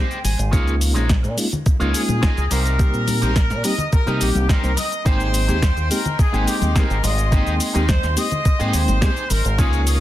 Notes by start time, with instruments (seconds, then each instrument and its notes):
Already playing: clean electric guitar G4 G#4 C5 D#5, trumpet section C5
0.11 clean electric guitar G5, closed hi-hat, shaker
0.24 fingered electric bass G#1, clean electric guitar G#5, open hi-hat, high conga, shaker
0.38 fingered electric bass G#1, muted clean electric guitar stroke, closed hi-hat, shaker
0.51 reed electric piano G#3 A#3 C#4 D#4 F4, clean electric guitar F4 G#4 A#4 C#5, kick, closed hi-hat, shaker
0.68 closed hi-hat, shaker
0.81 open hi-hat, shaker
0.94 fingered electric bass A#1, reed electric piano G#3 A#3 C#4 D#4 F4, clean electric guitar F4 G#4 A#4 C#5, closed hi-hat, shaker
1.09 kick, snare, closed hi-hat, shaker
1.23 fingered electric bass A#2, muted clean electric guitar stroke, closed hi-hat, shaker
1.37 reed electric piano G#3 A#3 C#4 D#4 F4, open hi-hat, shaker
1.52 closed hi-hat, low conga, shaker
1.66 muted fingered electric bass stroke, kick, closed hi-hat, shaker
1.79 fingered electric bass C#2, reed electric piano G#3 A#3 C#4 D#4 F4, clean electric guitar F4 G#4 A#4 C#5, closed hi-hat, shaker
1.94 trumpet section G#4, open hi-hat, shaker
2.09 fingered electric bass A#2, closed hi-hat, high conga, shaker
2.22 reed electric piano G#3 A#3 C#4 D#4 F4, clean electric guitar F4 G#4 A#4 D#5, kick, snare, closed hi-hat, shaker
2.37 fingered electric bass C#2, closed hi-hat, shaker
2.50 fingered electric bass C2, clean electric guitar D#4 G4 A#4 C5, trumpet section A#4, open hi-hat, high conga, shaker
2.66 closed hi-hat, shaker
2.79 reed electric piano G3 A#3 C4 D#4 G4, kick, closed hi-hat, shaker
2.94 fingered electric bass A#2, closed hi-hat, shaker
3.08 open hi-hat, high conga, shaker
3.21 fingered electric bass A#1, reed electric piano G3 A#3 C4 D#4 G4, clean electric guitar D#4 G4 A#4 C5, closed hi-hat, shaker
3.36 kick, snare, closed hi-hat, shaker
3.50 fingered electric bass A#2, muted clean electric guitar stroke, snare, closed hi-hat, shaker
3.64 reed electric piano G3 A#3 C4 D#4 G4, trumpet section D#5, open hi-hat, shaker
3.78 closed hi-hat, low conga, shaker
3.92 trumpet section A#4, kick, closed hi-hat, shaker
4.06 fingered electric bass C3, reed electric piano G3 A#3 C4 D#4 G4, clean electric guitar D#4 G4 A#4 D#5, closed hi-hat, shaker
4.20 fingered electric bass A#1, trumpet section G4, open hi-hat, shaker
4.35 fingered electric bass C2, closed hi-hat, high conga, shaker
4.49 clean electric guitar D#4 G4 A#4 C5, trumpet section A#4, kick, snare, closed hi-hat, shaker
4.63 fingered electric bass C2, reed electric piano G3 A#3 C4 D#4 C5, closed hi-hat, shaker
4.77 trumpet section D#5, open hi-hat, high conga, shaker
4.92 muted clean electric guitar stroke, closed hi-hat, shaker
5.05 fingered electric bass G#1, violin section G#3 G5 C6, reed electric piano G#3 A#3 C4 D#4 G5, clean electric guitar D#4 G4 G#4 C5, trumpet section C5, kick, closed hi-hat, shaker
5.20 closed hi-hat, shaker
5.34 open hi-hat, shaker
5.48 fingered electric bass D#2, reed electric piano G#3 A#3 C4 D#4 G4, clean electric guitar D#4 G4 G#4 C5, closed hi-hat, shaker
5.62 kick, snare, closed hi-hat, shaker
5.76 fingered electric bass D#2, muted clean electric guitar stroke, closed hi-hat, shaker
5.90 reed electric piano G#3 A#3 C4 D#4 G4, trumpet section A#4, open hi-hat, shaker
6.05 closed hi-hat, low conga, shaker
6.19 trumpet section G#4, muted fingered electric bass stroke, kick, closed hi-hat, shaker
6.32 fingered electric bass G#1, reed electric piano G#3 A#3 C4 D#4 G5, clean electric guitar D#4 G4 G#4 C5, closed hi-hat, shaker
6.47 trumpet section G4, open hi-hat, shaker
6.62 fingered electric bass D#2, closed hi-hat, high conga, shaker
6.75 reed electric piano G#3 A#3 C4 D#4 G4, clean electric guitar D#4 G4 G#4 C5, trumpet section A#4, kick, snare, closed hi-hat, shaker
6.90 fingered electric bass G#1, closed hi-hat, shaker
7.03 fingered electric bass G#1, trumpet section D#5, open hi-hat, high conga, shaker
7.17 muted clean electric guitar stroke, closed hi-hat, shaker
7.31 reed electric piano G#3 A#3 C4 D#4 G5, clean electric guitar D#4 G4 G#4 C5, kick, closed hi-hat, shaker
7.47 fingered electric bass D#2, closed hi-hat, shaker
7.60 open hi-hat, shaker
7.74 fingered electric bass D#2, reed electric piano G#3 A#3 C4 D#4 G4, clean electric guitar D#4 G4 G#4 A#4, closed hi-hat, shaker
7.89 trumpet section C5, kick, snare, closed hi-hat, shaker
8.02 fingered electric bass D#2, muted clean electric guitar stroke, snare, closed hi-hat, shaker
8.16 reed electric piano G#3 A#3 C4 D#4 G4, trumpet section D#5, open hi-hat, shaker
8.31 closed hi-hat, low conga, shaker
8.45 kick, closed hi-hat, shaker
8.59 fingered electric bass G#2, reed electric piano G#3 A#3 C4 D#4 G5, clean electric guitar D#4 G4 G#4 C5, closed hi-hat, shaker
8.73 fingered electric bass D#2, trumpet section C5, open hi-hat, shaker
8.88 fingered electric bass G#1, closed hi-hat, high conga, shaker
9.01 reed electric piano G#3 A#3 C4 D#4 G4, clean electric guitar D#4 G4 G#4 C5, kick, snare, closed hi-hat, shaker
9.16 closed hi-hat, shaker
9.30 fingered electric bass G#1, trumpet section A#4, open hi-hat, high conga, shaker
9.44 fingered electric bass G#1, muted clean electric guitar stroke, closed hi-hat, shaker
9.58 fingered electric bass C#2, reed electric piano G#3 A#3 C#4 D#4 F4, clean electric guitar F4 G#4 A#4 C#5, trumpet section G#4, violin section A#4 F5 C#6, kick, closed hi-hat, shaker
9.73 closed hi-hat, shaker
9.87 trumpet section G#4, open hi-hat, shaker